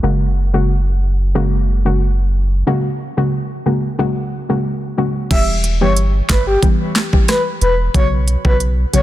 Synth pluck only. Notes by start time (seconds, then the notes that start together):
0.03 C#3 G#3 A#3 F#4
0.53 C#3 G#3 A#3 F#4
1.35 C#3 G#3 A#3 F#4
1.85 C#3 G#3 A#3 F#4
2.67 C#3 G#3 A#3 F#4
3.17 C#3 G#3 A#3 F#4
3.66 C#3 G#3 A#3 F#4
3.99 C#3 G#3 A#3 F#4
4.49 C#3 G#3 A#3 F#4
4.97 C#3 G#3 A#3 F#4
5.31 E3 G3 B3 G4
5.81 E3 G3 B3 G4
6.62 E3 G3 B3 G4
7.13 E3 G3 B3 G4
7.94 C#3 F#3 B3 F#4
8.45 C#3 F#3 B3 F#4
8.93 C#3 F#3 B3 F#4